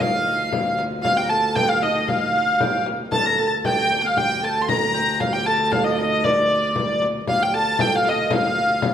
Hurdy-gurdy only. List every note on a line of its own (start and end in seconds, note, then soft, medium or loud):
0.01 0.79 F5 medium
1.03 1.17 F5 loud
1.17 1.30 G5 medium
1.30 1.56 A5 loud
1.56 1.69 G5 loud
1.69 1.83 F5 medium
1.83 2.09 D#5 medium
2.09 2.83 F5 medium
3.12 3.26 A5 loud
3.26 3.38 A#5 medium
3.38 3.50 A5 medium
3.66 4.01 G5 loud
4.01 4.06 G5 medium
4.06 4.18 F5 medium
4.18 4.44 G5 loud
4.44 4.63 A5 medium
4.62 4.69 C6 medium
4.69 5.21 A#5 loud
5.21 5.34 F5 medium
5.33 5.47 G5 medium
5.47 5.73 A5 medium
5.72 5.85 F5 medium
5.84 6.24 D#5 medium
6.24 7.02 D5 medium
7.29 7.43 F5 loud
7.43 7.55 G5 medium
7.54 7.81 A5 loud
7.81 7.96 G5 loud
7.96 8.08 F5 medium
8.08 8.32 D#5 medium
8.32 8.94 F5 medium